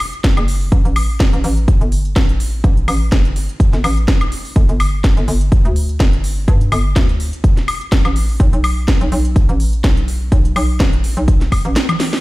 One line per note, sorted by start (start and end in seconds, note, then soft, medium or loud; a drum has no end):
0.00 open hi-hat loud
0.00 high woodblock medium
0.13 closed hi-hat soft
0.24 kick loud
0.24 snare loud
0.24 closed hi-hat medium
0.37 0.70 F#1 medium
0.37 closed hi-hat soft
0.37 high woodblock medium
0.48 open hi-hat loud
0.61 open hi-hat medium
0.72 0.83 A1 loud
0.72 kick loud
0.72 closed hi-hat medium
0.85 1.31 A1 medium
0.85 closed hi-hat soft
0.96 open hi-hat loud
0.96 high woodblock medium
1.20 kick loud
1.20 snare loud
1.20 closed hi-hat medium
1.33 1.42 A1 medium
1.33 closed hi-hat soft
1.44 1.79 A1 loud
1.44 open hi-hat loud
1.57 closed hi-hat soft
1.68 kick loud
1.68 closed hi-hat medium
1.81 2.14 G1 medium
1.81 closed hi-hat soft
1.92 open hi-hat loud
2.05 closed hi-hat soft
2.16 2.62 A1 loud
2.16 kick loud
2.16 snare loud
2.16 closed hi-hat medium
2.29 closed hi-hat soft
2.40 open hi-hat loud
2.64 2.86 A1 loud
2.64 kick loud
2.64 closed hi-hat medium
2.77 closed hi-hat soft
2.88 3.10 A1 loud
2.88 open hi-hat loud
2.88 high woodblock medium
3.12 3.47 G1 loud
3.12 kick loud
3.12 snare loud
3.12 closed hi-hat medium
3.25 closed hi-hat soft
3.36 open hi-hat loud
3.49 closed hi-hat soft
3.60 kick loud
3.60 closed hi-hat medium
3.73 3.82 G1 medium
3.73 snare soft
3.73 closed hi-hat soft
3.84 4.30 A1 medium
3.84 open hi-hat loud
3.84 high woodblock medium
3.97 closed hi-hat soft
4.08 kick loud
4.08 snare loud
4.08 closed hi-hat medium
4.21 closed hi-hat soft
4.21 high woodblock medium
4.32 open hi-hat loud
4.45 open hi-hat medium
4.56 4.67 G1 loud
4.56 kick loud
4.56 closed hi-hat medium
4.69 5.15 G1 loud
4.69 closed hi-hat soft
4.80 open hi-hat loud
4.80 high woodblock medium
5.04 kick loud
5.04 snare loud
5.04 closed hi-hat medium
5.17 5.26 G1 medium
5.17 closed hi-hat soft
5.28 5.63 G1 loud
5.28 open hi-hat loud
5.41 closed hi-hat soft
5.52 kick loud
5.52 closed hi-hat medium
5.65 5.98 D2 medium
5.65 closed hi-hat soft
5.76 open hi-hat loud
5.89 closed hi-hat soft
6.00 6.46 G1 loud
6.00 kick loud
6.00 snare loud
6.00 closed hi-hat medium
6.13 closed hi-hat soft
6.24 open hi-hat loud
6.48 6.70 G2 loud
6.48 kick loud
6.48 closed hi-hat medium
6.61 closed hi-hat medium
6.72 6.94 G1 medium
6.72 open hi-hat loud
6.72 high woodblock medium
6.96 7.31 D2 loud
6.96 kick loud
6.96 snare loud
6.96 closed hi-hat medium
7.09 closed hi-hat soft
7.20 open hi-hat loud
7.33 closed hi-hat medium
7.44 kick loud
7.44 closed hi-hat medium
7.57 snare soft
7.57 closed hi-hat soft
7.68 open hi-hat loud
7.68 high woodblock medium
7.81 closed hi-hat soft
7.92 kick loud
7.92 snare loud
7.92 closed hi-hat medium
8.05 8.38 A1 loud
8.05 closed hi-hat soft
8.05 high woodblock medium
8.16 open hi-hat loud
8.29 open hi-hat medium
8.40 8.51 B1 loud
8.40 kick loud
8.40 closed hi-hat medium
8.53 8.99 B1 medium
8.53 closed hi-hat medium
8.64 open hi-hat loud
8.64 high woodblock medium
8.88 kick loud
8.88 snare loud
8.88 closed hi-hat medium
9.01 9.10 B1 loud
9.01 closed hi-hat soft
9.12 9.47 B1 loud
9.12 open hi-hat loud
9.25 closed hi-hat medium
9.36 kick loud
9.36 closed hi-hat medium
9.49 9.82 A1 loud
9.49 closed hi-hat soft
9.60 open hi-hat loud
9.73 closed hi-hat soft
9.84 10.30 B1 loud
9.84 kick loud
9.84 snare loud
9.84 closed hi-hat medium
9.97 closed hi-hat soft
10.08 open hi-hat loud
10.32 10.54 B1 loud
10.32 kick loud
10.32 closed hi-hat medium
10.45 closed hi-hat medium
10.56 10.78 B1 loud
10.56 open hi-hat loud
10.56 high woodblock medium
10.80 11.15 A1 loud
10.80 kick loud
10.80 snare loud
10.80 closed hi-hat medium
10.93 closed hi-hat soft
11.04 open hi-hat loud
11.17 11.63 B1 medium
11.17 closed hi-hat medium
11.28 kick loud
11.28 closed hi-hat medium
11.41 snare soft
11.41 closed hi-hat soft
11.52 kick medium
11.52 open hi-hat loud
11.52 high woodblock medium
11.65 11.76 A1 loud
11.65 closed hi-hat soft
11.76 snare loud
11.76 closed hi-hat medium
11.89 closed hi-hat soft
11.89 high tom medium
11.89 high woodblock medium
12.00 snare medium
12.00 open hi-hat loud
12.13 snare medium
12.13 open hi-hat medium